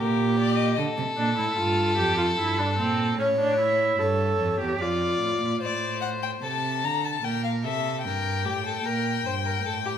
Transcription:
0.00 0.76 A#2 medium
0.00 0.78 G4 medium
0.00 0.37 A#4 medium
0.39 0.59 D5 medium
0.58 0.77 D#5 medium
0.77 0.86 D3 medium
0.77 3.18 A4 medium
0.98 1.06 C3 medium
1.17 1.37 A#2 medium
1.17 1.36 D4 medium
1.37 1.46 A2 medium
1.37 1.57 E4 medium
1.58 2.00 G2 medium
1.58 1.97 F4 medium
1.98 2.38 F2 medium
1.98 2.17 G4 medium
2.18 2.26 F4 medium
2.38 2.80 G2 medium
2.38 2.60 E4 medium
2.59 2.77 D4 medium
2.78 3.19 A#2 medium
2.78 3.18 C4 medium
3.18 3.98 A2 medium
3.18 3.27 C#4 medium
3.18 3.97 C#5 medium
3.39 3.59 D4 medium
3.60 4.01 E4 medium
3.99 4.39 G2 medium
3.99 4.60 A4 medium
3.99 4.79 C#5 medium
4.40 4.60 F2 medium
4.60 4.80 E2 medium
4.60 4.83 G4 medium
4.80 5.20 F2 medium
4.80 5.62 F4 medium
4.80 5.60 D5 medium
5.21 5.41 A2 medium
5.41 5.61 A#2 medium
5.61 6.39 A2 medium
5.61 6.44 C5 medium
5.61 6.00 D5 medium
6.01 6.09 F#5 medium
6.23 6.31 G5 medium
6.43 6.85 C3 medium
6.43 7.23 A4 medium
6.43 6.86 A5 medium
6.84 7.24 D3 medium
6.84 7.06 A#5 medium
7.04 7.25 A5 medium
7.24 7.66 A#2 medium
7.24 7.66 A#4 medium
7.24 7.43 G5 medium
7.44 7.52 F5 medium
7.64 8.06 C3 medium
7.64 8.05 A4 medium
7.64 8.04 E5 medium
8.04 8.46 G2 medium
8.04 8.47 A#4 medium
8.04 9.98 G5 medium
8.45 8.85 A2 medium
8.45 8.65 G4 medium
8.66 8.87 A4 medium
8.85 9.24 A#2 medium
8.85 9.25 A#4 medium
9.25 9.64 G2 medium
9.25 9.33 C5 medium
9.45 9.65 A#4 medium
9.65 9.98 A2 medium
9.65 9.73 A4 medium
9.85 9.93 G4 medium

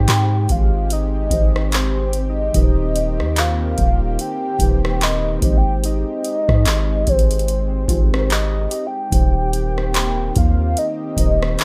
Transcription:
0.00 0.40 G#3 medium
0.00 2.51 G#3 medium
0.00 9.08 C4 medium
0.00 0.40 D#4 medium
0.00 0.41 G4 medium
0.00 9.08 G4 medium
0.00 0.45 C5 medium
0.00 0.53 G5 loud
0.08 0.48 G#2 loud
0.08 clap loud
0.08 closed hi-hat medium
0.49 1.29 G#1 loud
0.49 0.91 F5 loud
0.49 kick medium
0.49 closed hi-hat medium
0.90 1.70 D#5 loud
0.90 closed hi-hat medium
1.30 2.50 G#1 loud
1.30 2.47 G#3 medium
1.30 2.48 D#4 medium
1.30 2.49 G4 medium
1.30 2.49 C5 medium
1.30 kick medium
1.30 closed hi-hat medium
1.56 cross-stick medium
1.72 2.25 C5 loud
1.72 clap loud
1.72 closed hi-hat medium
2.13 closed hi-hat medium
2.29 3.41 D#5 loud
2.53 3.21 D#1 loud
2.53 4.09 D#3 medium
2.53 5.39 D#3 medium
2.53 5.39 A#3 medium
2.53 4.10 D#4 medium
2.53 4.11 G4 medium
2.53 2.63 B4 medium
2.53 4.04 D#5 medium
2.53 kick loud
2.53 closed hi-hat medium
2.63 4.15 C5 medium
2.96 closed hi-hat medium
3.20 3.75 D#2 loud
3.20 cross-stick medium
3.36 4.86 C5 medium
3.36 4.22 F5 loud
3.36 clap loud
3.36 closed hi-hat medium
3.78 4.18 D#1 loud
3.78 kick medium
3.78 closed hi-hat medium
4.19 5.05 G5 loud
4.19 closed hi-hat medium
4.59 5.39 D#1 loud
4.59 5.42 D#3 medium
4.59 5.41 D#4 medium
4.59 5.42 G4 medium
4.59 4.69 B4 medium
4.59 kick loud
4.59 closed hi-hat medium
4.69 5.43 C5 medium
4.85 cross-stick loud
5.01 5.59 D#5 loud
5.01 clap loud
5.01 closed hi-hat medium
5.41 6.05 G#1 loud
5.41 6.97 G#3 medium
5.41 9.08 G#3 medium
5.41 6.98 D#4 medium
5.41 6.99 G4 medium
5.41 6.99 C5 medium
5.41 kick loud
5.41 closed hi-hat medium
5.58 5.84 G5 loud
5.84 7.10 D#5 loud
5.84 closed hi-hat medium
6.25 closed hi-hat medium
6.49 6.65 G#2 loud
6.49 kick medium
6.49 cross-stick medium
6.66 7.05 G#1 loud
6.66 clap loud
6.66 closed hi-hat medium
7.07 7.86 G#1 loud
7.07 8.31 C5 loud
7.07 kick medium
7.07 closed hi-hat medium
7.19 closed hi-hat medium
7.31 closed hi-hat medium
7.39 closed hi-hat medium
7.48 closed hi-hat medium
7.87 8.68 G#1 loud
7.87 9.05 G#3 medium
7.87 9.06 D#4 medium
7.87 9.38 F4 medium
7.87 9.06 G4 medium
7.87 9.07 C5 medium
7.87 kick medium
7.87 closed hi-hat medium
8.14 cross-stick loud
8.18 9.60 A#4 medium
8.30 8.88 D#5 loud
8.30 clap loud
8.30 closed hi-hat medium
8.71 9.49 G4 medium
8.71 closed hi-hat medium
8.87 10.39 G5 loud
9.10 10.32 D#1 loud
9.10 10.67 D#3 medium
9.10 11.64 D#3 medium
9.10 11.64 A#3 medium
9.10 11.64 C4 medium
9.10 10.68 D#4 medium
9.10 11.64 G4 medium
9.10 10.68 G4 medium
9.10 10.69 C5 medium
9.10 kick loud
9.10 closed hi-hat medium
9.53 closed hi-hat medium
9.78 cross-stick medium
9.94 11.43 C5 medium
9.94 clap loud
9.94 closed hi-hat medium
10.36 10.75 D#2 loud
10.36 10.80 F5 loud
10.36 kick loud
10.36 closed hi-hat medium
10.77 11.60 D#5 loud
10.77 closed hi-hat medium
11.16 11.57 D#1 loud
11.16 11.64 D#3 medium
11.16 11.64 D#4 medium
11.16 11.64 G4 medium
11.16 11.64 C5 medium
11.16 kick medium
11.16 closed hi-hat medium
11.43 cross-stick loud
11.59 11.64 D#5 loud
11.59 11.64 D6 medium
11.59 clap loud
11.59 closed hi-hat medium

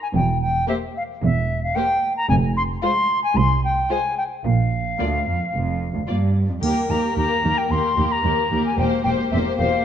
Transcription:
0.02 0.08 G#5 medium
0.15 0.57 E1 medium
0.15 0.57 E2 medium
0.15 0.41 G5 medium
0.41 0.68 G5 medium
0.68 0.77 A#3 soft
0.68 0.76 G4 medium
0.68 0.76 C5 medium
0.68 0.75 E5 medium
0.97 1.03 F5 medium
1.23 1.65 E1 medium
1.23 1.65 E2 medium
1.23 1.63 E5 medium
1.63 1.77 F5 medium
1.75 1.84 A#3 soft
1.75 1.85 G4 soft
1.75 1.84 C5 medium
1.75 2.16 G5 medium
2.17 2.28 A#5 medium
2.29 2.72 F1 medium
2.29 2.72 F2 medium
2.29 2.35 G#5 medium
2.57 2.63 C6 medium
2.83 2.91 G#3 medium
2.83 2.91 F4 medium
2.83 2.91 C5 medium
2.83 3.22 C6 medium
3.24 3.38 G#5 medium
3.36 3.79 C2 medium
3.36 3.63 C6 medium
3.64 3.93 G5 medium
3.89 3.99 G#3 soft
3.89 3.98 F4 soft
3.89 3.97 C5 medium
3.89 4.17 G#5 medium
4.18 4.24 G5 medium
4.44 4.87 A#1 medium
4.44 4.88 A#2 medium
4.44 6.31 F5 medium
4.99 5.25 D2 soft
4.99 5.07 A#3 soft
4.99 5.07 F4 soft
4.99 5.07 D5 soft
5.27 5.35 F2 medium
5.54 5.97 F1 medium
5.54 5.94 F2 medium
5.95 6.00 D2 soft
6.07 6.48 G2 medium
6.07 6.17 A#3 soft
6.07 6.15 F4 soft
6.07 6.16 D5 soft
6.49 6.63 F2 soft
6.62 6.70 D#2 soft
6.62 6.71 D#2 soft
6.62 6.89 A#3 soft
6.62 6.88 G4 soft
6.62 6.89 A#4 soft
6.62 6.92 G5 medium
6.62 triangle soft
6.89 6.98 D#2 soft
6.89 7.16 A#3 soft
6.89 7.15 G4 soft
6.89 7.16 A#4 soft
6.89 7.17 A#5 medium
7.16 7.24 D#2 soft
7.16 7.25 D#2 soft
7.16 7.43 A#3 soft
7.16 7.42 G4 soft
7.16 7.43 A#4 soft
7.16 7.59 A#5 medium
7.43 7.52 D#2 medium
7.43 7.52 D#2 soft
7.43 7.71 A#3 soft
7.43 7.70 G4 soft
7.43 7.69 A#4 soft
7.58 7.72 G5 medium
7.70 7.78 D#2 soft
7.70 7.79 D#2 medium
7.70 7.98 A#3 soft
7.70 7.96 G4 soft
7.70 7.96 A#4 soft
7.70 8.13 C6 medium
7.97 8.05 D#2 soft
7.97 8.06 D#2 soft
7.97 8.24 A#3 soft
7.97 8.22 G4 soft
7.97 8.23 A#4 soft
8.12 8.65 A#5 medium
8.23 8.32 D#2 soft
8.23 8.33 D#2 soft
8.23 8.51 A#3 soft
8.23 8.49 G4 soft
8.23 8.51 A#4 soft
8.50 8.59 D#2 soft
8.50 8.61 D#2 medium
8.50 8.78 A#3 soft
8.50 8.76 G4 soft
8.50 8.78 A#4 soft
8.65 8.78 G#5 medium
8.77 8.88 E1 medium
8.77 8.86 E2 medium
8.77 9.05 A#3 medium
8.77 9.03 G4 soft
8.77 9.03 C5 medium
8.77 8.85 G5 medium
9.04 9.14 E1 soft
9.04 9.13 E2 soft
9.04 9.32 A#3 soft
9.04 9.30 G4 soft
9.04 9.30 C5 medium
9.04 9.10 G5 medium
9.31 9.41 E1 soft
9.31 9.40 E2 medium
9.31 9.58 A#3 soft
9.31 9.57 G4 soft
9.31 9.57 C5 soft
9.31 9.38 E5 medium
9.57 9.67 E1 medium
9.57 9.67 E2 medium
9.57 9.85 A#3 soft
9.57 9.85 G4 soft
9.57 9.84 C5 soft
9.57 9.85 F5 medium

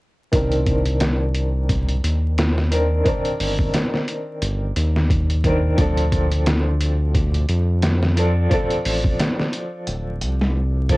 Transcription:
0.32 2.01 C2 medium
0.32 2.67 D#3 medium
0.32 2.68 C4 medium
0.32 2.69 D4 medium
0.32 2.69 A#4 medium
0.32 kick loud
0.32 closed hi-hat medium
0.52 closed hi-hat soft
0.67 kick medium
0.67 closed hi-hat medium
0.86 closed hi-hat soft
1.00 snare loud
1.00 closed hi-hat medium
1.34 closed hi-hat medium
1.69 kick medium
1.69 closed hi-hat medium
1.88 closed hi-hat soft
2.04 3.03 D#2 medium
2.04 closed hi-hat medium
2.38 snare loud
2.38 closed hi-hat medium
2.58 snare soft
2.71 3.02 D#3 medium
2.71 3.02 C4 medium
2.71 3.02 D4 medium
2.71 3.03 A#4 medium
2.71 closed hi-hat medium
3.04 5.40 D#3 medium
3.04 5.40 C4 medium
3.04 5.41 D4 medium
3.04 5.42 A#4 medium
3.04 kick medium
3.04 closed hi-hat medium
3.25 closed hi-hat soft
3.40 3.70 G1 medium
3.40 open hi-hat medium
3.59 kick medium
3.74 snare medium
3.74 closed hi-hat medium
3.94 snare soft
4.08 closed hi-hat medium
4.42 4.72 G1 medium
4.42 closed hi-hat medium
4.76 5.76 D#2 medium
4.76 closed hi-hat medium
4.96 snare soft
5.10 kick medium
5.10 closed hi-hat medium
5.30 closed hi-hat soft
5.44 5.75 D#3 medium
5.44 5.75 C4 medium
5.44 5.75 D4 medium
5.44 5.76 A#4 medium
5.44 kick medium
5.44 closed hi-hat medium
5.77 7.46 D2 loud
5.77 8.13 F3 medium
5.77 8.13 C4 medium
5.77 8.14 D4 medium
5.77 kick loud
5.77 closed hi-hat medium
5.81 8.15 A4 medium
5.97 closed hi-hat soft
6.12 kick medium
6.12 closed hi-hat medium
6.32 closed hi-hat soft
6.46 snare loud
6.46 closed hi-hat medium
6.81 closed hi-hat medium
7.15 kick loud
7.15 closed hi-hat medium
7.34 closed hi-hat soft
7.49 8.48 F2 medium
7.49 closed hi-hat medium
7.82 snare loud
7.82 closed hi-hat medium
8.03 snare soft
8.17 8.47 F3 medium
8.17 8.48 C4 medium
8.17 8.48 D4 medium
8.17 8.48 A4 medium
8.17 closed hi-hat medium
8.50 10.85 F3 medium
8.50 10.86 C4 medium
8.50 10.87 D4 medium
8.50 kick loud
8.50 closed hi-hat medium
8.54 10.87 A4 medium
8.70 closed hi-hat soft
8.85 9.16 A1 medium
8.85 open hi-hat medium
9.04 kick medium
9.19 snare loud
9.19 closed hi-hat medium
9.40 snare soft
9.53 closed hi-hat medium
9.87 10.23 D1 medium
9.87 closed hi-hat medium
10.21 10.97 C2 medium
10.21 closed hi-hat medium
10.41 snare soft
10.89 10.97 F3 medium
10.89 10.97 C4 medium
10.89 10.97 D4 medium
10.89 10.97 A4 medium
10.89 kick medium
10.89 closed hi-hat medium

